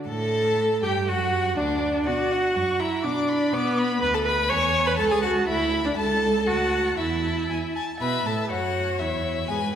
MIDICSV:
0, 0, Header, 1, 5, 480
1, 0, Start_track
1, 0, Tempo, 491400
1, 81, Time_signature, 2, 2, 24, 8
1, 5839, Tempo, 508044
1, 7759, Tempo, 492207
1, 9458, End_track
2, 0, Start_track
2, 0, Title_t, "Violin"
2, 0, Program_c, 0, 40
2, 81, Note_on_c, 0, 69, 57
2, 772, Note_off_c, 0, 69, 0
2, 808, Note_on_c, 0, 67, 51
2, 886, Note_off_c, 0, 67, 0
2, 1062, Note_on_c, 0, 66, 57
2, 1535, Note_on_c, 0, 62, 52
2, 1549, Note_off_c, 0, 66, 0
2, 2009, Note_off_c, 0, 62, 0
2, 2015, Note_on_c, 0, 74, 46
2, 2265, Note_on_c, 0, 78, 39
2, 2279, Note_off_c, 0, 74, 0
2, 2489, Note_off_c, 0, 78, 0
2, 2495, Note_on_c, 0, 85, 41
2, 2732, Note_on_c, 0, 82, 39
2, 2747, Note_off_c, 0, 85, 0
2, 2962, Note_off_c, 0, 82, 0
2, 2968, Note_on_c, 0, 86, 46
2, 3214, Note_on_c, 0, 83, 41
2, 3228, Note_off_c, 0, 86, 0
2, 3455, Note_on_c, 0, 86, 42
2, 3470, Note_off_c, 0, 83, 0
2, 3695, Note_on_c, 0, 83, 46
2, 3709, Note_off_c, 0, 86, 0
2, 3925, Note_off_c, 0, 83, 0
2, 3931, Note_on_c, 0, 83, 47
2, 4402, Note_on_c, 0, 80, 49
2, 4417, Note_off_c, 0, 83, 0
2, 4870, Note_on_c, 0, 81, 49
2, 4884, Note_off_c, 0, 80, 0
2, 5348, Note_off_c, 0, 81, 0
2, 5354, Note_on_c, 0, 83, 48
2, 5828, Note_off_c, 0, 83, 0
2, 5836, Note_on_c, 0, 81, 52
2, 6276, Note_off_c, 0, 81, 0
2, 6310, Note_on_c, 0, 81, 44
2, 6781, Note_off_c, 0, 81, 0
2, 6789, Note_on_c, 0, 81, 40
2, 7265, Note_off_c, 0, 81, 0
2, 7277, Note_on_c, 0, 80, 43
2, 7353, Note_off_c, 0, 80, 0
2, 7509, Note_on_c, 0, 81, 45
2, 7746, Note_off_c, 0, 81, 0
2, 7752, Note_on_c, 0, 76, 45
2, 8237, Note_on_c, 0, 73, 42
2, 8252, Note_off_c, 0, 76, 0
2, 9184, Note_off_c, 0, 73, 0
2, 9190, Note_on_c, 0, 71, 46
2, 9458, Note_off_c, 0, 71, 0
2, 9458, End_track
3, 0, Start_track
3, 0, Title_t, "Violin"
3, 0, Program_c, 1, 40
3, 84, Note_on_c, 1, 81, 53
3, 773, Note_off_c, 1, 81, 0
3, 813, Note_on_c, 1, 79, 46
3, 1049, Note_off_c, 1, 79, 0
3, 1057, Note_on_c, 1, 78, 51
3, 1527, Note_off_c, 1, 78, 0
3, 1542, Note_on_c, 1, 74, 55
3, 2009, Note_off_c, 1, 74, 0
3, 2019, Note_on_c, 1, 78, 54
3, 2731, Note_on_c, 1, 76, 50
3, 2745, Note_off_c, 1, 78, 0
3, 2977, Note_on_c, 1, 74, 58
3, 2992, Note_off_c, 1, 76, 0
3, 3457, Note_on_c, 1, 71, 53
3, 3472, Note_off_c, 1, 74, 0
3, 3922, Note_off_c, 1, 71, 0
3, 3928, Note_on_c, 1, 83, 63
3, 3975, Note_off_c, 1, 83, 0
3, 4043, Note_on_c, 1, 81, 55
3, 4090, Note_off_c, 1, 81, 0
3, 4159, Note_on_c, 1, 83, 66
3, 4396, Note_on_c, 1, 85, 67
3, 4411, Note_off_c, 1, 83, 0
3, 4746, Note_on_c, 1, 83, 60
3, 4761, Note_off_c, 1, 85, 0
3, 4848, Note_off_c, 1, 83, 0
3, 4854, Note_on_c, 1, 81, 62
3, 4972, Note_off_c, 1, 81, 0
3, 4978, Note_on_c, 1, 80, 58
3, 5095, Note_off_c, 1, 80, 0
3, 5101, Note_on_c, 1, 78, 58
3, 5179, Note_off_c, 1, 78, 0
3, 5341, Note_on_c, 1, 76, 62
3, 5711, Note_on_c, 1, 74, 58
3, 5726, Note_off_c, 1, 76, 0
3, 5823, Note_off_c, 1, 74, 0
3, 5829, Note_on_c, 1, 81, 60
3, 6300, Note_on_c, 1, 78, 61
3, 6314, Note_off_c, 1, 81, 0
3, 6778, Note_on_c, 1, 76, 49
3, 6793, Note_off_c, 1, 78, 0
3, 7513, Note_off_c, 1, 76, 0
3, 7521, Note_on_c, 1, 80, 48
3, 7597, Note_off_c, 1, 80, 0
3, 7759, Note_on_c, 1, 83, 58
3, 8005, Note_on_c, 1, 81, 49
3, 8020, Note_off_c, 1, 83, 0
3, 8231, Note_off_c, 1, 81, 0
3, 8237, Note_on_c, 1, 78, 55
3, 8719, Note_on_c, 1, 76, 47
3, 8733, Note_off_c, 1, 78, 0
3, 9191, Note_on_c, 1, 80, 56
3, 9205, Note_off_c, 1, 76, 0
3, 9426, Note_off_c, 1, 80, 0
3, 9458, End_track
4, 0, Start_track
4, 0, Title_t, "Viola"
4, 0, Program_c, 2, 41
4, 92, Note_on_c, 2, 69, 62
4, 822, Note_on_c, 2, 67, 64
4, 836, Note_off_c, 2, 69, 0
4, 1060, Note_on_c, 2, 66, 65
4, 1074, Note_off_c, 2, 67, 0
4, 1528, Note_off_c, 2, 66, 0
4, 1534, Note_on_c, 2, 62, 63
4, 2015, Note_on_c, 2, 66, 66
4, 2029, Note_off_c, 2, 62, 0
4, 2736, Note_on_c, 2, 64, 65
4, 2750, Note_off_c, 2, 66, 0
4, 2971, Note_on_c, 2, 62, 67
4, 2985, Note_off_c, 2, 64, 0
4, 3448, Note_on_c, 2, 59, 75
4, 3463, Note_off_c, 2, 62, 0
4, 3917, Note_off_c, 2, 59, 0
4, 3923, Note_on_c, 2, 71, 73
4, 4046, Note_on_c, 2, 69, 66
4, 4060, Note_off_c, 2, 71, 0
4, 4157, Note_on_c, 2, 71, 68
4, 4172, Note_off_c, 2, 69, 0
4, 4389, Note_on_c, 2, 73, 78
4, 4403, Note_off_c, 2, 71, 0
4, 4757, Note_on_c, 2, 71, 69
4, 4772, Note_off_c, 2, 73, 0
4, 4869, Note_off_c, 2, 71, 0
4, 4875, Note_on_c, 2, 69, 85
4, 4997, Note_on_c, 2, 68, 67
4, 5012, Note_off_c, 2, 69, 0
4, 5110, Note_off_c, 2, 68, 0
4, 5116, Note_on_c, 2, 66, 66
4, 5351, Note_off_c, 2, 66, 0
4, 5355, Note_on_c, 2, 64, 78
4, 5710, Note_off_c, 2, 64, 0
4, 5721, Note_on_c, 2, 62, 58
4, 5769, Note_off_c, 2, 62, 0
4, 5845, Note_on_c, 2, 69, 74
4, 6307, Note_on_c, 2, 66, 66
4, 6321, Note_off_c, 2, 69, 0
4, 6785, Note_off_c, 2, 66, 0
4, 6791, Note_on_c, 2, 64, 59
4, 7505, Note_off_c, 2, 64, 0
4, 7757, Note_on_c, 2, 71, 52
4, 8006, Note_on_c, 2, 69, 43
4, 8021, Note_off_c, 2, 71, 0
4, 8250, Note_on_c, 2, 66, 56
4, 8265, Note_off_c, 2, 69, 0
4, 8724, Note_on_c, 2, 64, 45
4, 8738, Note_off_c, 2, 66, 0
4, 9200, Note_off_c, 2, 64, 0
4, 9210, Note_on_c, 2, 68, 54
4, 9288, Note_off_c, 2, 68, 0
4, 9458, End_track
5, 0, Start_track
5, 0, Title_t, "Cello"
5, 0, Program_c, 3, 42
5, 82, Note_on_c, 3, 45, 55
5, 772, Note_off_c, 3, 45, 0
5, 810, Note_on_c, 3, 43, 53
5, 1054, Note_on_c, 3, 42, 54
5, 1068, Note_off_c, 3, 43, 0
5, 1535, Note_off_c, 3, 42, 0
5, 1542, Note_on_c, 3, 38, 50
5, 2009, Note_off_c, 3, 38, 0
5, 2022, Note_on_c, 3, 47, 62
5, 2421, Note_off_c, 3, 47, 0
5, 2497, Note_on_c, 3, 42, 54
5, 2897, Note_off_c, 3, 42, 0
5, 2974, Note_on_c, 3, 47, 61
5, 3373, Note_off_c, 3, 47, 0
5, 3445, Note_on_c, 3, 47, 61
5, 3846, Note_off_c, 3, 47, 0
5, 3922, Note_on_c, 3, 38, 56
5, 4404, Note_on_c, 3, 40, 51
5, 4418, Note_off_c, 3, 38, 0
5, 4873, Note_on_c, 3, 37, 58
5, 4887, Note_off_c, 3, 40, 0
5, 5348, Note_on_c, 3, 38, 52
5, 5363, Note_off_c, 3, 37, 0
5, 5829, Note_off_c, 3, 38, 0
5, 5835, Note_on_c, 3, 37, 54
5, 6313, Note_on_c, 3, 38, 48
5, 6327, Note_off_c, 3, 37, 0
5, 6784, Note_off_c, 3, 38, 0
5, 6790, Note_on_c, 3, 40, 45
5, 7265, Note_off_c, 3, 40, 0
5, 7273, Note_on_c, 3, 40, 39
5, 7349, Note_off_c, 3, 40, 0
5, 7757, Note_on_c, 3, 47, 54
5, 7985, Note_off_c, 3, 47, 0
5, 7995, Note_on_c, 3, 45, 40
5, 8237, Note_off_c, 3, 45, 0
5, 8242, Note_on_c, 3, 42, 49
5, 8720, Note_on_c, 3, 40, 44
5, 8734, Note_off_c, 3, 42, 0
5, 9198, Note_on_c, 3, 44, 47
5, 9213, Note_off_c, 3, 40, 0
5, 9423, Note_off_c, 3, 44, 0
5, 9458, End_track
0, 0, End_of_file